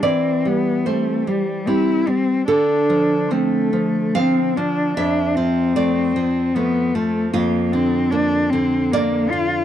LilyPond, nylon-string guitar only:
\new Staff \with { instrumentName = "Nylon-string guitar" } { \clef bass \time 3/4 \key d \dorian \tempo 4 = 75 << { d''4 c''4. r8 | a'2 f''4 | e''4 d''4. r8 | \key bes \mixolydian f'2 d''4 | } \\ { e8 g8 <g c'>8 g8 <g c'>8 g8 | d8 f8 <f c'>8 f8 <f c'>8 f8 | f,8 f8 <f a>8 f8 <f a>8 f8 | f,8 d8 <d bes>8 d8 <d bes>8 d8 | } >> }